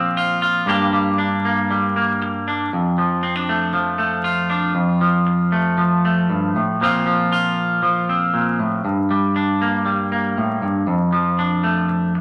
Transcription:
0.00 0.68 A#2 medium
0.00 0.66 F3 medium
0.00 0.65 C4 medium
0.00 0.16 F4 medium
0.17 0.41 F4 medium
0.42 0.67 F4 medium
0.66 2.68 G2 medium
0.66 0.92 G3 medium
0.66 1.44 A#3 medium
0.66 1.18 D4 medium
0.66 2.21 G4 medium
0.93 1.69 G3 medium
1.18 2.46 D4 medium
1.45 1.95 A#3 medium
1.70 2.69 G3 medium
1.96 2.69 A#3 medium
2.22 muted clean electric guitar stroke medium
2.48 2.70 D4 medium
2.73 4.74 F2 medium
2.98 3.73 F3 medium
3.23 3.36 C4 medium
3.36 4.48 D4 soft
3.49 3.97 A3 medium
3.73 5.01 F3 medium
3.98 4.72 A3 medium
4.24 6.79 F4 medium
4.50 4.72 D4 medium
4.75 6.28 F2 medium
5.01 5.77 F3 medium
5.27 muted clean electric guitar stroke medium
5.52 6.03 A3 medium
5.78 6.77 F3 medium
6.05 6.77 A3 medium
6.30 6.54 G2 medium
6.56 6.80 A2 medium
6.81 8.32 A#2 medium
6.81 7.05 F3 medium
6.81 7.57 C4 medium
6.81 7.31 F4 medium
7.06 7.81 F3 medium
7.32 8.84 F4 medium
7.82 8.81 F3 medium
8.09 8.81 C4 medium
8.34 8.58 A#2 medium
8.59 8.84 A2 medium
8.85 10.36 G2 medium
9.11 9.84 G3 medium
9.36 10.84 D4 medium
9.61 10.11 A#3 medium
9.85 10.84 G3 medium
10.12 10.84 A#3 medium
10.38 10.62 A2 medium
10.62 10.87 G2 medium
10.87 12.21 F2 medium
11.13 11.88 F3 medium
11.39 12.21 D4 medium
11.63 12.14 A3 medium
11.89 muted clean electric guitar stroke medium
12.15 muted clean electric guitar stroke medium

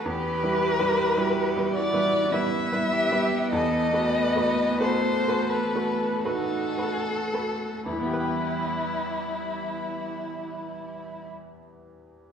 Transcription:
0.05 0.42 E2 medium
0.05 1.19 G4 medium
0.05 1.17 G4 medium
0.05 1.73 B4 loud
0.43 0.77 G3 medium
0.43 0.77 E4 medium
0.43 0.77 B4 medium
0.80 1.14 G3 medium
0.80 1.14 E4 medium
0.80 1.14 B4 medium
1.17 1.51 G3 medium
1.17 1.52 E4 medium
1.17 1.73 F#4 medium
1.17 1.77 G4 medium
1.17 1.52 B4 medium
1.56 1.90 G3 medium
1.56 1.90 E4 medium
1.56 1.91 B4 medium
1.74 2.33 E4 medium
1.74 2.34 F#4 medium
1.74 2.34 D5 loud
1.93 2.28 G3 medium
1.93 2.28 E4 medium
1.93 2.29 B4 medium
2.32 2.68 G3 medium
2.32 6.26 B3 loud
2.32 2.95 E4 medium
2.32 2.68 E4 medium
2.32 2.68 B4 medium
2.32 3.50 E5 loud
2.72 3.07 G3 medium
2.72 3.08 E4 medium
2.72 3.08 B4 medium
2.93 3.52 G4 medium
3.11 3.48 G3 medium
3.11 3.48 E4 medium
3.11 3.48 B4 medium
3.51 3.92 E2 medium
3.51 4.18 A4 medium
3.51 4.77 D#5 loud
3.94 4.32 A3 medium
3.94 4.32 F#4 medium
3.94 4.32 B4 medium
4.16 4.82 B4 medium
4.36 4.76 A3 medium
4.36 4.76 F#4 medium
4.36 4.77 B4 medium
4.80 5.22 A3 medium
4.80 5.22 F#4 medium
4.80 6.26 A4 medium
4.80 5.23 B4 medium
4.80 5.51 C5 loud
5.28 5.71 A3 medium
5.28 5.71 F#4 medium
5.28 5.71 B4 medium
5.50 6.26 B4 loud
5.75 6.21 A3 medium
5.75 6.21 F#4 medium
5.75 6.21 B4 medium
6.24 6.74 A3 medium
6.24 7.05 D#4 medium
6.24 7.57 F#4 medium
6.24 6.74 F#4 medium
6.24 7.85 A4 loud
6.24 6.74 B4 medium
6.78 7.30 A3 medium
6.78 7.30 F#4 medium
6.78 7.30 B4 medium
7.34 7.82 A3 medium
7.34 7.82 F#4 medium
7.34 7.82 B4 medium
7.84 11.30 E2 medium
7.84 11.28 G3 medium
7.84 11.30 E4 loud
7.84 11.31 E4 medium
7.93 11.37 E3 medium
7.99 11.43 B3 medium
8.06 11.50 G4 medium
8.14 11.58 B4 medium
8.20 11.64 G5 medium

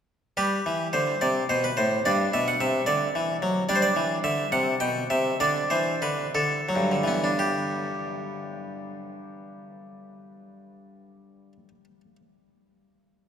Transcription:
0.37 0.58 G3 medium
0.37 1.18 G4 soft
0.37 0.94 B4 medium
0.66 0.86 E3 medium
0.93 1.14 D3 medium
0.93 1.21 C5 medium
1.21 1.42 C3 medium
1.21 1.45 D5 medium
1.49 1.69 B2 medium
1.49 1.63 C5 medium
1.64 1.77 B4 medium
1.77 1.97 A2 medium
1.77 2.01 C5 medium
2.05 2.25 G2 medium
2.05 2.84 D4 soft
2.05 2.33 D5 medium
2.34 2.53 B2 medium
2.34 2.47 E5 loud
2.48 2.61 F#5 medium
2.60 2.80 C3 medium
2.60 2.88 E5 medium
2.86 3.07 D3 medium
2.86 3.68 D5 loud
3.15 3.35 E3 medium
3.42 3.62 F#3 medium
3.69 3.89 G3 medium
3.69 4.48 D4 soft
3.69 3.76 D5 loud
3.75 3.83 C5 medium
3.82 4.18 D5 loud
3.96 4.16 E3 medium
4.24 4.44 D3 medium
4.24 4.48 E5 medium
4.52 4.73 C3 medium
4.52 4.77 F#5 loud
4.80 5.02 B2 medium
4.80 5.05 G5 loud
5.10 5.32 C3 medium
5.10 5.36 E5 loud
5.40 5.62 D3 medium
5.40 6.30 D4 soft
5.40 5.71 D5 loud
5.70 5.94 E3 medium
5.70 6.02 C5 medium
6.02 6.26 D3 medium
6.02 6.29 B4 medium
6.35 6.59 D3 medium
6.35 7.39 A4 medium
6.69 6.94 F#3 medium
6.76 11.52 G2 medium
6.92 11.68 D3 soft
7.04 7.29 E3 medium
7.04 11.84 B3 soft
7.24 12.01 D4 soft
7.39 12.16 G4 medium

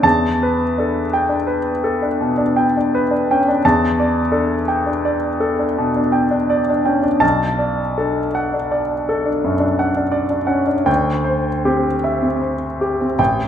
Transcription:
0.03 3.59 E2 soft
0.03 0.63 A5 medium
0.43 1.00 B4 soft
0.78 1.06 D4 soft
0.78 1.35 A4 soft
1.13 1.71 G5 soft
1.29 1.59 D4 soft
1.47 2.06 B4 soft
1.84 2.42 A4 soft
2.02 2.31 D4 soft
2.21 2.77 B2 soft
2.38 2.66 D4 soft
2.56 3.13 G5 soft
2.77 3.04 D4 soft
2.95 3.50 B4 soft
3.11 3.39 D4 soft
3.31 3.47 C#4 soft
3.31 3.65 G5 soft
3.48 3.65 D4 soft
3.65 7.19 E2 medium
3.65 4.20 A5 medium
4.00 4.55 D5 soft
4.32 4.60 D4 soft
4.32 4.89 A4 soft
4.68 5.27 G5 soft
4.86 5.16 D4 soft
5.05 5.64 D5 soft
5.40 5.99 A4 soft
5.59 5.89 D4 soft
5.78 6.36 B2 soft
5.96 6.25 D4 soft
6.12 6.70 G5 soft
6.31 6.60 D4 soft
6.50 7.08 D5 soft
6.70 6.98 D4 soft
6.86 7.04 C#4 soft
6.86 7.22 G5 soft
7.03 7.22 D4 soft
7.20 10.84 B1 medium
7.20 7.80 A5 medium
7.59 8.18 D5 soft
7.98 8.27 D4 soft
7.98 8.55 A4 soft
8.35 8.91 F#5 soft
8.53 8.81 D4 soft
8.71 9.28 D5 soft
9.09 9.65 A4 soft
9.26 9.53 D4 soft
9.44 10.01 F#2 soft
9.60 9.89 D4 soft
9.79 10.37 F#5 soft
9.97 10.26 D4 soft
10.12 10.72 D5 soft
10.30 10.61 D4 soft
10.47 10.68 C#4 soft
10.47 10.86 F#5 soft
10.67 10.87 D4 soft
10.86 13.14 D2 soft
10.86 11.47 G5 medium
11.24 11.86 C5 soft
11.65 11.95 C4 soft
11.65 12.27 G4 soft
12.04 12.66 E5 soft
12.22 12.54 C4 soft
12.41 13.04 C5 soft
12.81 13.19 G4 soft
13.01 13.20 C4 soft
13.19 13.48 A1 soft
13.19 13.48 G5 medium

